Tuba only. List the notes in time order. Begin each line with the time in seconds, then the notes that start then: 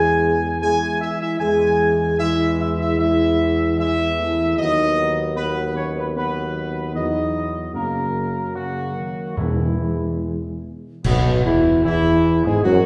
Already playing: E2
1.41 E2
4.59 D#2
6.95 E2
7.74 F#2
9.37 E2
11.05 B1
11.45 E2
11.85 E2
12.46 G#2
12.66 F#2